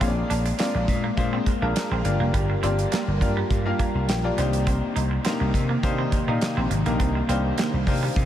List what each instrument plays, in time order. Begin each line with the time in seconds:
Already playing: analog synth pad A#3
0.01 slap bass A#1, analog synth pad G#3, grand piano A#3 D4 F4 G#4 C#5, clean electric guitar C4, kick, closed hi-hat
0.08 grand piano D5
0.30 slap bass A#1, clean electric guitar D4, closed hi-hat
0.45 muted clean electric guitar stroke, closed hi-hat
0.59 grand piano A#3 D4 F4 G#4 D5, clean electric guitar C4, snare, clap, closed hi-hat
0.75 slap bass A#1, muted clean electric guitar stroke
0.88 slap bass A#2, kick, closed hi-hat
1.04 clean electric guitar A#3
1.17 slap bass A#2, grand piano A#3 D4 F4 G#4 C5, kick, closed hi-hat
1.33 clean electric guitar C4
1.46 muted clean electric guitar stroke, kick, closed hi-hat
1.62 slap bass A#1, grand piano A#3 D4 F4 G#4 A#4, clean electric guitar D4
1.76 snare, clap, closed hi-hat
1.91 slap bass A#1, clean electric guitar C4
2.04 slap bass G1, analog synth pad G3 F4 A#4, grand piano A#3 D4 F4 G4 D5, muted clean electric guitar stroke, closed hi-hat
2.20 slap bass F1, clean electric guitar A#3
2.34 slap bass G1, clean electric guitar G3, kick, closed hi-hat
2.50 muted clean electric guitar stroke
2.63 slap bass G1, grand piano A#3 D4 F4 G4 D5, clean electric guitar C4, closed hi-hat
2.79 closed hi-hat
2.92 clean electric guitar A#3, snare, clap, closed hi-hat
3.08 slap bass G1
3.21 slap bass G2, grand piano A#3 D4 F4 G4 D5, muted clean electric guitar stroke, kick, closed hi-hat
3.37 clean electric guitar G3
3.51 slap bass G2, kick, closed hi-hat
3.66 grand piano A#3 D4 F4 G4 F5
3.79 clean electric guitar A#3, grand piano A#5, kick, closed hi-hat
3.95 slap bass C2
4.09 slap bass A#1, grand piano G5, snare, clap, closed hi-hat
4.24 grand piano A#3 D4 F4 G4 D5
4.37 slap bass C2, analog synth pad C3 D#3 A#3, clean electric guitar G3, grand piano A#3 D4 D#4 G4 C5 F5, closed hi-hat
4.53 closed hi-hat
4.67 clean electric guitar C4, kick, closed hi-hat
4.96 slap bass C2, clean electric guitar D#4, closed hi-hat
5.11 muted clean electric guitar stroke
5.25 grand piano A#3 D4 D#4 G4 A#4, clean electric guitar C4, snare, clap, closed hi-hat
5.40 slap bass C2, muted clean electric guitar stroke
5.54 slap bass C3, kick, closed hi-hat
5.69 clean electric guitar A#3
5.83 slap bass C3, grand piano A#3 D4 D#4 G4 C5, kick, closed hi-hat
5.98 clean electric guitar C4
6.12 muted clean electric guitar stroke, kick, closed hi-hat
6.28 slap bass A#2, grand piano A#3 D#4 G4 D5 D#5, clean electric guitar D#4
6.41 snare, clap, closed hi-hat
6.57 slap bass A#1, clean electric guitar C4
6.71 slap bass G#1, muted clean electric guitar stroke, closed hi-hat
6.86 slap bass A#1, grand piano A#3 D4 D#4 G4 A#4, clean electric guitar A#3, closed hi-hat
7.00 slap bass C2, clean electric guitar C4, kick, closed hi-hat
7.15 muted clean electric guitar stroke
7.29 slap bass C2, grand piano A#3 D4 D#4 G4 C5, clean electric guitar C4, closed hi-hat
7.58 clean electric guitar A#3, snare, clap, closed hi-hat
7.73 slap bass C2
7.87 slap bass C3, grand piano A#3 D4 D#4 G4 C5, muted clean electric guitar stroke, kick, open hi-hat
8.03 clean electric guitar G3
8.16 slap bass C3, kick, closed hi-hat